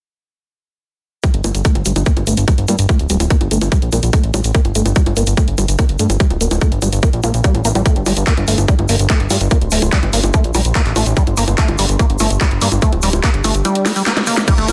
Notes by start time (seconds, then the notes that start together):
1.24 G3 D4, kick, closed hi-hat, high bongo, shaker
1.34 G1, closed hi-hat
1.44 G1 A#3 G4, closed hi-hat, high bongo, shaker
1.50 G5
1.55 G1, closed hi-hat, shaker
1.65 A3, kick, closed hi-hat, shaker
1.75 G1, closed hi-hat, high bongo
1.85 G1 G3, closed hi-hat, shaker
1.96 G1, closed hi-hat, high bongo, shaker
2.06 A#3, kick, closed hi-hat, shaker
2.17 G1, closed hi-hat, high bongo
2.27 G1 A3, closed hi-hat, shaker
2.37 G1, closed hi-hat, shaker
2.48 G3, kick, closed hi-hat, high bongo, shaker
2.58 G1, closed hi-hat
2.68 G2 A#3, closed hi-hat, high bongo, shaker
2.78 G1, closed hi-hat, shaker
2.89 A3, kick, closed hi-hat, high bongo, shaker
2.99 D1, closed hi-hat
3.09 D1 G3, closed hi-hat, shaker
3.20 D1, closed hi-hat, high bongo, shaker
3.30 A#3, kick, closed hi-hat, shaker
3.41 G1, closed hi-hat, high bongo
3.51 G1 A3, closed hi-hat, shaker
3.61 G1, closed hi-hat, high bongo, shaker
3.72 G3, kick, closed hi-hat, shaker
3.82 A#1, closed hi-hat
3.92 A#1 A#3, closed hi-hat, high bongo, shaker
4.03 A#1, closed hi-hat, shaker
4.13 A3, kick, closed hi-hat, high bongo, shaker
4.24 A1, closed hi-hat
4.34 A1 G3, closed hi-hat, high bongo, shaker
4.44 A1, closed hi-hat, shaker
4.55 A#3, kick, closed hi-hat, shaker
4.65 G1, closed hi-hat, high bongo
4.75 G1 A3, closed hi-hat, shaker
4.86 G1, closed hi-hat, high bongo, shaker
4.96 G3, kick, closed hi-hat, shaker
5.06 G1, closed hi-hat, high bongo
5.16 G1 A#3, closed hi-hat, shaker
5.26 G1, closed hi-hat, shaker
5.37 A3, kick, closed hi-hat, high bongo, shaker
5.48 G1, closed hi-hat
5.58 G1 G3, closed hi-hat, high bongo, shaker
5.68 G1, closed hi-hat, shaker
5.78 A#3, kick, closed hi-hat, high bongo, shaker
5.89 G1, closed hi-hat
5.99 G2 A3, closed hi-hat, shaker
6.10 G1, closed hi-hat, high bongo, shaker
6.20 G3, kick, closed hi-hat, shaker
6.30 D1, closed hi-hat, high bongo
6.41 D1 A#3, closed hi-hat, shaker
6.51 D1, closed hi-hat, high bongo, shaker
6.61 A3, kick, closed hi-hat, shaker
6.72 G1, closed hi-hat
6.82 G1 G3, closed hi-hat, high bongo, shaker
6.92 G1, closed hi-hat, shaker
7.03 A#3, kick, closed hi-hat, high bongo, shaker
7.13 A#1, closed hi-hat
7.23 A#1 A#3, closed hi-hat, high bongo, shaker
7.34 A#1, closed hi-hat, shaker
7.44 G3, kick, closed hi-hat, shaker
7.55 A1, closed hi-hat, high bongo
7.65 A1 A#3, closed hi-hat, shaker
7.75 A1 G3, closed hi-hat, high bongo, shaker
7.86 A3, kick, closed hi-hat, high bongo, shaker
7.96 G1, closed hi-hat
8.06 G1 G3, open hi-hat, high bongo, shaker
8.12 C6
8.16 G1, closed hi-hat, shaker
8.27 A#3, kick, clap, closed hi-hat, shaker
8.37 G1, closed hi-hat, high bongo
8.48 G1 A3, open hi-hat, shaker
8.58 G1, closed hi-hat, high bongo, shaker
8.68 G3, kick, closed hi-hat, shaker
8.79 G1, closed hi-hat, high bongo
8.89 G1 A#3, open hi-hat, shaker
8.99 G1, closed hi-hat, shaker
9.10 A3, kick, clap, closed hi-hat, high bongo, shaker
9.20 G1, closed hi-hat
9.30 G2 G3, open hi-hat, high bongo, shaker
9.41 G1, closed hi-hat, shaker
9.51 A#3, kick, closed hi-hat, high bongo, shaker
9.61 D1, closed hi-hat
9.71 D1 A3, open hi-hat, shaker
9.82 D1, closed hi-hat, high bongo, shaker
9.93 G3, kick, clap, closed hi-hat, shaker
10.03 G1, closed hi-hat, high bongo
10.13 G1 A#3, open hi-hat, shaker
10.23 G1, closed hi-hat, high bongo, shaker
10.33 A3, kick, closed hi-hat, shaker
10.44 A#1, closed hi-hat
10.54 A#1 G3, open hi-hat, high bongo, shaker
10.64 A#1, closed hi-hat, shaker
10.75 A#3, kick, clap, closed hi-hat, high bongo, shaker
10.86 A1, clap, closed hi-hat
10.96 A1 A3, open hi-hat, high bongo, shaker
11.06 A1, closed hi-hat, shaker
11.16 G3, kick, closed hi-hat, shaker
11.27 G1, closed hi-hat, high bongo
11.37 G1 A#3, open hi-hat, shaker
11.48 G1, closed hi-hat, high bongo, shaker
11.58 A3, kick, clap, closed hi-hat, shaker
11.68 G1, closed hi-hat, high bongo
11.79 G1 G3, open hi-hat, shaker
11.89 G1, closed hi-hat, shaker
11.99 A#3, kick, closed hi-hat, high bongo, shaker
12.10 G1, closed hi-hat
12.19 G1 A3, open hi-hat, high bongo, shaker
12.30 G1, closed hi-hat, shaker
12.41 G3, kick, clap, closed hi-hat, high bongo, shaker
12.51 G1, closed hi-hat
12.61 G2 A#3, open hi-hat, shaker
12.71 G1, closed hi-hat, high bongo, shaker
12.82 A3, kick, closed hi-hat, shaker
12.93 D1, closed hi-hat, high bongo
13.02 D1 G3, open hi-hat, shaker
13.13 D1, closed hi-hat, high bongo, shaker
13.24 A#3, kick, clap, closed hi-hat, shaker
13.34 G1, closed hi-hat
13.44 G1 A3, open hi-hat, high bongo, shaker
13.54 G1, closed hi-hat, shaker
13.65 G3, closed hi-hat, high bongo, shaker
13.75 closed hi-hat
13.86 A3, snare, open hi-hat, high bongo, shaker
13.95 G3, open hi-hat, shaker
14.06 A#3, snare, clap, closed hi-hat, shaker
14.17 snare, closed hi-hat, zap, high bongo
14.27 A#3, open hi-hat, shaker
14.37 snare, closed hi-hat, high bongo, shaker
14.47 G3, kick, closed hi-hat, crash, high bongo, shaker
14.58 G1 A3, closed hi-hat
14.68 G1 A#3, open hi-hat, high bongo, shaker